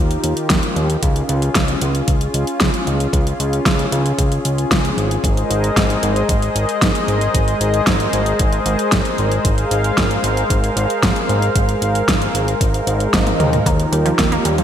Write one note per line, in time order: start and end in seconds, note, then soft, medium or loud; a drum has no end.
0.00 0.18 D#2 medium
0.00 0.99 D#3 medium
0.00 0.99 D#4 medium
0.00 0.99 F4 medium
0.00 0.99 G4 medium
0.00 0.98 A#4 medium
0.11 closed hi-hat soft
0.24 0.34 D#2 medium
0.24 closed hi-hat medium
0.37 closed hi-hat soft
0.50 0.60 D#2 medium
0.50 kick loud
0.50 snare loud
0.50 closed hi-hat medium
0.63 closed hi-hat soft
0.76 0.97 D#2 loud
0.76 closed hi-hat soft
0.90 closed hi-hat soft
1.02 1.23 C#2 medium
1.02 5.20 C#4 medium
1.02 5.20 F4 medium
1.02 13.62 G#4 medium
1.02 kick loud
1.02 closed hi-hat medium
1.16 closed hi-hat soft
1.29 1.50 C#2 medium
1.29 closed hi-hat medium
1.42 closed hi-hat soft
1.55 1.76 C#2 medium
1.55 kick loud
1.55 snare loud
1.55 closed hi-hat medium
1.68 closed hi-hat soft
1.81 2.02 C#2 medium
1.81 closed hi-hat medium
1.95 closed hi-hat soft
2.08 2.28 C#2 medium
2.08 kick loud
2.08 closed hi-hat medium
2.21 closed hi-hat soft
2.34 2.45 C#2 medium
2.34 closed hi-hat medium
2.47 closed hi-hat soft
2.60 2.71 C#2 medium
2.60 kick loud
2.60 snare loud
2.60 closed hi-hat medium
2.74 closed hi-hat soft
2.87 3.07 C#2 medium
2.87 closed hi-hat soft
3.00 closed hi-hat soft
3.13 3.34 C#2 loud
3.13 kick loud
3.13 closed hi-hat medium
3.27 closed hi-hat soft
3.40 3.60 C#2 medium
3.40 closed hi-hat medium
3.53 closed hi-hat soft
3.66 3.86 C#2 medium
3.66 kick loud
3.66 snare loud
3.66 closed hi-hat medium
3.79 closed hi-hat soft
3.92 4.13 C#2 medium
3.92 closed hi-hat medium
4.06 closed hi-hat soft
4.18 4.39 C#2 medium
4.18 kick loud
4.18 closed hi-hat medium
4.32 closed hi-hat soft
4.45 4.66 C#2 medium
4.45 closed hi-hat medium
4.58 closed hi-hat soft
4.71 4.92 C#2 loud
4.71 kick loud
4.71 snare loud
4.71 closed hi-hat medium
4.85 closed hi-hat soft
4.97 5.18 G#1 loud
4.97 closed hi-hat soft
5.11 closed hi-hat soft
5.24 5.44 G#1 loud
5.24 13.62 G#3 medium
5.24 14.64 A#4 medium
5.24 13.62 C5 medium
5.24 9.41 D#5 medium
5.24 kick loud
5.24 closed hi-hat medium
5.37 closed hi-hat soft
5.50 5.71 G#1 medium
5.50 closed hi-hat medium
5.64 closed hi-hat soft
5.76 5.97 G#1 medium
5.76 kick loud
5.76 snare loud
5.76 closed hi-hat medium
5.90 closed hi-hat soft
6.03 6.23 G#1 medium
6.03 closed hi-hat medium
6.16 closed hi-hat soft
6.29 6.50 G#1 medium
6.29 kick loud
6.29 closed hi-hat medium
6.42 closed hi-hat soft
6.55 6.66 G#1 medium
6.55 closed hi-hat medium
6.69 closed hi-hat soft
6.82 6.92 G#1 medium
6.82 kick loud
6.82 snare loud
6.82 closed hi-hat medium
6.95 closed hi-hat soft
7.08 7.29 G#1 loud
7.08 closed hi-hat soft
7.21 closed hi-hat soft
7.34 7.55 G#1 loud
7.34 kick loud
7.34 closed hi-hat medium
7.48 closed hi-hat soft
7.61 7.81 G#1 medium
7.61 closed hi-hat medium
7.74 closed hi-hat soft
7.87 8.07 G#1 medium
7.87 kick loud
7.87 snare loud
7.87 closed hi-hat medium
8.00 closed hi-hat soft
8.13 8.34 G#1 medium
8.13 closed hi-hat medium
8.26 closed hi-hat soft
8.39 8.60 G#1 medium
8.39 kick loud
8.39 closed hi-hat medium
8.53 closed hi-hat soft
8.66 8.76 G#1 medium
8.66 closed hi-hat medium
8.79 closed hi-hat soft
8.92 9.02 G#1 medium
8.92 kick loud
8.92 snare loud
8.92 closed hi-hat medium
9.05 closed hi-hat soft
9.18 9.39 G#1 loud
9.18 closed hi-hat soft
9.32 closed hi-hat soft
9.45 9.65 G#1 loud
9.45 13.62 F5 medium
9.45 kick loud
9.45 closed hi-hat medium
9.58 closed hi-hat soft
9.71 9.92 G#1 medium
9.71 closed hi-hat medium
9.84 closed hi-hat soft
9.98 10.18 G#1 medium
9.98 kick loud
9.98 snare loud
9.98 closed hi-hat medium
10.11 closed hi-hat soft
10.24 10.44 G#1 medium
10.24 closed hi-hat medium
10.37 closed hi-hat soft
10.50 10.71 G#1 medium
10.50 kick loud
10.50 closed hi-hat medium
10.64 closed hi-hat soft
10.77 10.87 G#1 medium
10.77 closed hi-hat medium
10.90 closed hi-hat soft
11.03 11.13 G#1 medium
11.03 kick loud
11.03 snare loud
11.03 closed hi-hat medium
11.16 closed hi-hat soft
11.29 11.50 G#1 loud
11.29 closed hi-hat soft
11.42 closed hi-hat soft
11.56 11.76 G#1 medium
11.56 kick loud
11.56 closed hi-hat medium
11.69 closed hi-hat soft
11.82 12.02 G#1 medium
11.82 closed hi-hat medium
11.95 closed hi-hat soft
12.08 12.29 G#1 medium
12.08 kick loud
12.08 snare loud
12.08 closed hi-hat medium
12.22 closed hi-hat soft
12.34 12.55 G#1 medium
12.34 closed hi-hat medium
12.48 closed hi-hat soft
12.61 12.81 G#1 medium
12.61 kick loud
12.61 closed hi-hat medium
12.61 swell medium
12.74 closed hi-hat soft
12.87 13.08 G#1 medium
12.87 closed hi-hat medium
13.00 closed hi-hat soft
13.13 13.34 G#1 loud
13.13 kick loud
13.13 snare loud
13.13 closed hi-hat medium
13.27 closed hi-hat soft
13.27 high tom soft
13.40 13.60 D#2 loud
13.40 closed hi-hat soft
13.40 mid tom medium
13.53 closed hi-hat soft
13.53 mid tom medium
13.66 13.87 D#2 loud
13.66 14.64 D#3 medium
13.66 13.74 A#3 medium
13.66 14.64 D#4 medium
13.66 14.64 F4 medium
13.66 14.64 G4 medium
13.66 kick loud
13.66 closed hi-hat medium
13.80 closed hi-hat soft
13.92 14.13 D#2 medium
13.92 14.04 G3 medium
13.92 closed hi-hat medium
14.06 14.10 F3 medium
14.06 closed hi-hat soft
14.19 14.39 D#2 medium
14.19 14.31 A#3 medium
14.19 kick loud
14.19 snare loud
14.19 closed hi-hat medium
14.32 14.44 A#3 loud
14.32 closed hi-hat soft
14.45 14.64 D#2 medium
14.45 14.57 G3 medium
14.45 closed hi-hat medium
14.58 14.63 F3 medium
14.58 closed hi-hat soft